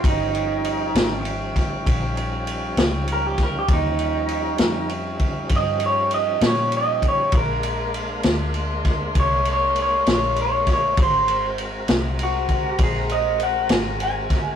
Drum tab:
RD |xxxxxxxxxxxx|xxxxxxxxxxxx|xxxxxxxxxxxx|xxxxxxxxxxxx|
SD |---o-o---o-o|---o-----o--|---o-o---o-o|---o-----o-o|
BD |o----oo----o|o----oo----o|o----oo----o|o----oo----o|